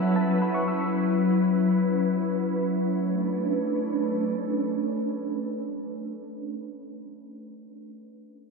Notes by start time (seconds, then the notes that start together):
Already playing: F#3 C#4 E4 B4 E5 F#5 A5
0.02 C#5 F#5
0.16 E5 A5
0.42 F#5 B5
0.54 F#5 C#6
0.68 B5 E6
2.89 A3 C#4 D4 B4